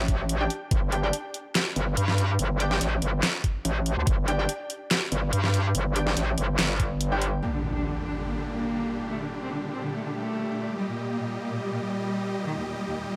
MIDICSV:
0, 0, Header, 1, 7, 480
1, 0, Start_track
1, 0, Key_signature, -2, "minor"
1, 0, Tempo, 419580
1, 816, Time_signature, 4, 2, 24, 8
1, 15056, End_track
2, 0, Start_track
2, 0, Title_t, "Synth stab"
2, 0, Program_c, 0, 62
2, 462, Note_on_c, 0, 62, 90
2, 462, Note_on_c, 0, 67, 79
2, 462, Note_on_c, 0, 79, 95
2, 559, Note_off_c, 0, 62, 0
2, 559, Note_off_c, 0, 67, 0
2, 559, Note_off_c, 0, 79, 0
2, 1056, Note_on_c, 0, 62, 77
2, 1056, Note_on_c, 0, 67, 67
2, 1056, Note_on_c, 0, 79, 79
2, 1163, Note_off_c, 0, 62, 0
2, 1163, Note_off_c, 0, 67, 0
2, 1163, Note_off_c, 0, 79, 0
2, 1181, Note_on_c, 0, 62, 85
2, 1181, Note_on_c, 0, 79, 91
2, 1182, Note_on_c, 0, 67, 72
2, 1278, Note_off_c, 0, 62, 0
2, 1278, Note_off_c, 0, 79, 0
2, 1279, Note_off_c, 0, 67, 0
2, 2976, Note_on_c, 0, 62, 78
2, 2976, Note_on_c, 0, 67, 71
2, 2976, Note_on_c, 0, 79, 85
2, 3043, Note_off_c, 0, 62, 0
2, 3043, Note_off_c, 0, 67, 0
2, 3043, Note_off_c, 0, 79, 0
2, 3102, Note_on_c, 0, 62, 69
2, 3102, Note_on_c, 0, 67, 63
2, 3102, Note_on_c, 0, 79, 80
2, 3162, Note_off_c, 0, 62, 0
2, 3162, Note_off_c, 0, 67, 0
2, 3162, Note_off_c, 0, 79, 0
2, 4896, Note_on_c, 0, 62, 75
2, 4896, Note_on_c, 0, 67, 66
2, 4896, Note_on_c, 0, 79, 84
2, 5003, Note_off_c, 0, 62, 0
2, 5003, Note_off_c, 0, 67, 0
2, 5003, Note_off_c, 0, 79, 0
2, 5022, Note_on_c, 0, 62, 84
2, 5022, Note_on_c, 0, 67, 78
2, 5022, Note_on_c, 0, 79, 91
2, 5118, Note_off_c, 0, 79, 0
2, 5119, Note_off_c, 0, 62, 0
2, 5119, Note_off_c, 0, 67, 0
2, 6816, Note_on_c, 0, 62, 76
2, 6816, Note_on_c, 0, 67, 67
2, 6816, Note_on_c, 0, 79, 84
2, 6882, Note_off_c, 0, 62, 0
2, 6882, Note_off_c, 0, 79, 0
2, 6883, Note_off_c, 0, 67, 0
2, 6942, Note_on_c, 0, 62, 70
2, 6942, Note_on_c, 0, 67, 63
2, 6942, Note_on_c, 0, 79, 78
2, 7002, Note_off_c, 0, 62, 0
2, 7002, Note_off_c, 0, 67, 0
2, 7002, Note_off_c, 0, 79, 0
2, 8141, Note_on_c, 0, 79, 100
2, 8142, Note_on_c, 0, 62, 90
2, 8142, Note_on_c, 0, 67, 82
2, 8238, Note_off_c, 0, 79, 0
2, 8239, Note_off_c, 0, 62, 0
2, 8239, Note_off_c, 0, 67, 0
2, 15056, End_track
3, 0, Start_track
3, 0, Title_t, "Supersaw synth"
3, 0, Program_c, 1, 81
3, 8495, Note_on_c, 1, 50, 64
3, 8495, Note_on_c, 1, 55, 67
3, 8495, Note_on_c, 1, 67, 82
3, 8496, Note_on_c, 1, 46, 74
3, 8496, Note_on_c, 1, 62, 66
3, 12297, Note_off_c, 1, 50, 0
3, 12297, Note_off_c, 1, 62, 0
3, 12336, Note_on_c, 1, 75, 62
3, 15056, Note_off_c, 1, 46, 0
3, 15056, Note_off_c, 1, 55, 0
3, 15056, Note_off_c, 1, 67, 0
3, 15056, Note_off_c, 1, 75, 0
3, 15056, End_track
4, 0, Start_track
4, 0, Title_t, "Cello"
4, 0, Program_c, 2, 42
4, 8494, Note_on_c, 2, 58, 78
4, 8572, Note_off_c, 2, 58, 0
4, 8620, Note_on_c, 2, 50, 54
4, 8691, Note_off_c, 2, 50, 0
4, 8735, Note_on_c, 2, 50, 56
4, 8812, Note_off_c, 2, 50, 0
4, 8859, Note_on_c, 2, 62, 80
4, 8930, Note_off_c, 2, 62, 0
4, 8974, Note_on_c, 2, 50, 52
4, 9052, Note_off_c, 2, 50, 0
4, 9100, Note_on_c, 2, 50, 55
4, 9170, Note_off_c, 2, 50, 0
4, 9215, Note_on_c, 2, 62, 78
4, 9292, Note_off_c, 2, 62, 0
4, 9342, Note_on_c, 2, 50, 53
4, 9411, Note_off_c, 2, 50, 0
4, 9456, Note_on_c, 2, 58, 74
4, 9533, Note_off_c, 2, 58, 0
4, 9582, Note_on_c, 2, 50, 55
4, 9651, Note_off_c, 2, 50, 0
4, 9696, Note_on_c, 2, 58, 90
4, 10324, Note_off_c, 2, 58, 0
4, 10416, Note_on_c, 2, 57, 83
4, 10493, Note_off_c, 2, 57, 0
4, 10542, Note_on_c, 2, 50, 54
4, 10611, Note_off_c, 2, 50, 0
4, 10655, Note_on_c, 2, 50, 55
4, 10732, Note_off_c, 2, 50, 0
4, 10782, Note_on_c, 2, 60, 80
4, 10851, Note_off_c, 2, 60, 0
4, 10895, Note_on_c, 2, 50, 55
4, 10972, Note_off_c, 2, 50, 0
4, 11021, Note_on_c, 2, 50, 57
4, 11091, Note_off_c, 2, 50, 0
4, 11135, Note_on_c, 2, 60, 75
4, 11212, Note_off_c, 2, 60, 0
4, 11261, Note_on_c, 2, 50, 53
4, 11331, Note_off_c, 2, 50, 0
4, 11376, Note_on_c, 2, 57, 74
4, 11452, Note_off_c, 2, 57, 0
4, 11501, Note_on_c, 2, 50, 54
4, 11571, Note_off_c, 2, 50, 0
4, 11616, Note_on_c, 2, 57, 84
4, 12244, Note_off_c, 2, 57, 0
4, 12335, Note_on_c, 2, 55, 81
4, 12412, Note_off_c, 2, 55, 0
4, 12461, Note_on_c, 2, 46, 57
4, 12531, Note_off_c, 2, 46, 0
4, 12576, Note_on_c, 2, 46, 57
4, 12653, Note_off_c, 2, 46, 0
4, 12701, Note_on_c, 2, 58, 81
4, 12771, Note_off_c, 2, 58, 0
4, 12817, Note_on_c, 2, 46, 55
4, 12893, Note_off_c, 2, 46, 0
4, 12943, Note_on_c, 2, 46, 58
4, 13012, Note_off_c, 2, 46, 0
4, 13056, Note_on_c, 2, 58, 76
4, 13133, Note_off_c, 2, 58, 0
4, 13183, Note_on_c, 2, 46, 52
4, 13252, Note_off_c, 2, 46, 0
4, 13297, Note_on_c, 2, 55, 76
4, 13373, Note_off_c, 2, 55, 0
4, 13423, Note_on_c, 2, 46, 57
4, 13492, Note_off_c, 2, 46, 0
4, 13536, Note_on_c, 2, 55, 88
4, 14165, Note_off_c, 2, 55, 0
4, 14257, Note_on_c, 2, 51, 82
4, 14333, Note_off_c, 2, 51, 0
4, 14383, Note_on_c, 2, 39, 57
4, 14452, Note_off_c, 2, 39, 0
4, 14498, Note_on_c, 2, 39, 55
4, 14574, Note_off_c, 2, 39, 0
4, 14623, Note_on_c, 2, 55, 82
4, 14692, Note_off_c, 2, 55, 0
4, 14738, Note_on_c, 2, 39, 54
4, 14814, Note_off_c, 2, 39, 0
4, 14865, Note_on_c, 2, 39, 55
4, 14933, Note_off_c, 2, 39, 0
4, 14978, Note_on_c, 2, 55, 78
4, 15054, Note_off_c, 2, 55, 0
4, 15056, End_track
5, 0, Start_track
5, 0, Title_t, "Wobble bass"
5, 0, Program_c, 3, 39
5, 0, Note_on_c, 3, 33, 96
5, 557, Note_off_c, 3, 33, 0
5, 816, Note_on_c, 3, 31, 89
5, 1277, Note_off_c, 3, 31, 0
5, 2015, Note_on_c, 3, 31, 99
5, 2237, Note_off_c, 3, 31, 0
5, 2255, Note_on_c, 3, 43, 99
5, 2717, Note_off_c, 3, 43, 0
5, 2735, Note_on_c, 3, 31, 98
5, 3197, Note_off_c, 3, 31, 0
5, 3215, Note_on_c, 3, 33, 98
5, 3437, Note_off_c, 3, 33, 0
5, 3455, Note_on_c, 3, 31, 96
5, 3677, Note_off_c, 3, 31, 0
5, 4176, Note_on_c, 3, 33, 103
5, 4521, Note_off_c, 3, 33, 0
5, 4541, Note_on_c, 3, 38, 93
5, 4637, Note_off_c, 3, 38, 0
5, 4656, Note_on_c, 3, 31, 94
5, 5117, Note_off_c, 3, 31, 0
5, 5856, Note_on_c, 3, 31, 101
5, 6077, Note_off_c, 3, 31, 0
5, 6096, Note_on_c, 3, 43, 100
5, 6558, Note_off_c, 3, 43, 0
5, 6576, Note_on_c, 3, 31, 94
5, 7037, Note_off_c, 3, 31, 0
5, 7056, Note_on_c, 3, 33, 100
5, 7277, Note_off_c, 3, 33, 0
5, 7296, Note_on_c, 3, 31, 99
5, 7517, Note_off_c, 3, 31, 0
5, 7535, Note_on_c, 3, 31, 100
5, 8477, Note_off_c, 3, 31, 0
5, 15056, End_track
6, 0, Start_track
6, 0, Title_t, "Impact"
6, 0, Program_c, 4, 103
6, 8495, Note_on_c, 4, 60, 61
6, 10415, Note_off_c, 4, 60, 0
6, 15056, End_track
7, 0, Start_track
7, 0, Title_t, "Drums"
7, 95, Note_on_c, 9, 42, 51
7, 96, Note_on_c, 9, 36, 62
7, 210, Note_off_c, 9, 36, 0
7, 210, Note_off_c, 9, 42, 0
7, 335, Note_on_c, 9, 42, 75
7, 450, Note_off_c, 9, 42, 0
7, 575, Note_on_c, 9, 42, 54
7, 690, Note_off_c, 9, 42, 0
7, 815, Note_on_c, 9, 42, 76
7, 816, Note_on_c, 9, 36, 117
7, 930, Note_off_c, 9, 36, 0
7, 930, Note_off_c, 9, 42, 0
7, 1055, Note_on_c, 9, 42, 52
7, 1170, Note_off_c, 9, 42, 0
7, 1295, Note_on_c, 9, 42, 80
7, 1410, Note_off_c, 9, 42, 0
7, 1535, Note_on_c, 9, 42, 50
7, 1650, Note_off_c, 9, 42, 0
7, 1775, Note_on_c, 9, 38, 113
7, 1775, Note_on_c, 9, 39, 83
7, 1775, Note_on_c, 9, 42, 74
7, 1890, Note_off_c, 9, 38, 0
7, 1890, Note_off_c, 9, 39, 0
7, 1890, Note_off_c, 9, 42, 0
7, 2015, Note_on_c, 9, 42, 49
7, 2130, Note_off_c, 9, 42, 0
7, 2255, Note_on_c, 9, 42, 78
7, 2369, Note_off_c, 9, 42, 0
7, 2381, Note_on_c, 9, 38, 36
7, 2495, Note_off_c, 9, 38, 0
7, 2495, Note_on_c, 9, 42, 53
7, 2609, Note_off_c, 9, 42, 0
7, 2735, Note_on_c, 9, 42, 75
7, 2849, Note_off_c, 9, 42, 0
7, 2975, Note_on_c, 9, 42, 55
7, 3090, Note_off_c, 9, 42, 0
7, 3101, Note_on_c, 9, 38, 37
7, 3215, Note_off_c, 9, 38, 0
7, 3215, Note_on_c, 9, 42, 84
7, 3329, Note_off_c, 9, 42, 0
7, 3455, Note_on_c, 9, 42, 51
7, 3570, Note_off_c, 9, 42, 0
7, 3695, Note_on_c, 9, 38, 113
7, 3695, Note_on_c, 9, 39, 84
7, 3695, Note_on_c, 9, 42, 81
7, 3810, Note_off_c, 9, 38, 0
7, 3810, Note_off_c, 9, 39, 0
7, 3810, Note_off_c, 9, 42, 0
7, 3935, Note_on_c, 9, 36, 58
7, 3935, Note_on_c, 9, 42, 55
7, 4050, Note_off_c, 9, 36, 0
7, 4050, Note_off_c, 9, 42, 0
7, 4175, Note_on_c, 9, 42, 76
7, 4289, Note_off_c, 9, 42, 0
7, 4416, Note_on_c, 9, 42, 55
7, 4530, Note_off_c, 9, 42, 0
7, 4655, Note_on_c, 9, 42, 79
7, 4656, Note_on_c, 9, 36, 111
7, 4770, Note_off_c, 9, 36, 0
7, 4770, Note_off_c, 9, 42, 0
7, 4895, Note_on_c, 9, 42, 58
7, 5010, Note_off_c, 9, 42, 0
7, 5135, Note_on_c, 9, 42, 83
7, 5250, Note_off_c, 9, 42, 0
7, 5375, Note_on_c, 9, 42, 55
7, 5489, Note_off_c, 9, 42, 0
7, 5616, Note_on_c, 9, 38, 112
7, 5616, Note_on_c, 9, 39, 86
7, 5616, Note_on_c, 9, 42, 80
7, 5730, Note_off_c, 9, 38, 0
7, 5730, Note_off_c, 9, 39, 0
7, 5730, Note_off_c, 9, 42, 0
7, 5855, Note_on_c, 9, 42, 57
7, 5970, Note_off_c, 9, 42, 0
7, 6095, Note_on_c, 9, 42, 77
7, 6210, Note_off_c, 9, 42, 0
7, 6221, Note_on_c, 9, 38, 36
7, 6335, Note_off_c, 9, 38, 0
7, 6335, Note_on_c, 9, 42, 60
7, 6450, Note_off_c, 9, 42, 0
7, 6575, Note_on_c, 9, 42, 82
7, 6690, Note_off_c, 9, 42, 0
7, 6815, Note_on_c, 9, 42, 57
7, 6929, Note_off_c, 9, 42, 0
7, 6941, Note_on_c, 9, 38, 35
7, 7055, Note_off_c, 9, 38, 0
7, 7055, Note_on_c, 9, 42, 83
7, 7170, Note_off_c, 9, 42, 0
7, 7295, Note_on_c, 9, 42, 53
7, 7409, Note_off_c, 9, 42, 0
7, 7535, Note_on_c, 9, 38, 116
7, 7535, Note_on_c, 9, 39, 94
7, 7535, Note_on_c, 9, 42, 82
7, 7649, Note_off_c, 9, 38, 0
7, 7649, Note_off_c, 9, 39, 0
7, 7649, Note_off_c, 9, 42, 0
7, 7775, Note_on_c, 9, 36, 61
7, 7775, Note_on_c, 9, 42, 59
7, 7889, Note_off_c, 9, 42, 0
7, 7890, Note_off_c, 9, 36, 0
7, 8015, Note_on_c, 9, 42, 81
7, 8130, Note_off_c, 9, 42, 0
7, 8255, Note_on_c, 9, 42, 58
7, 8369, Note_off_c, 9, 42, 0
7, 15056, End_track
0, 0, End_of_file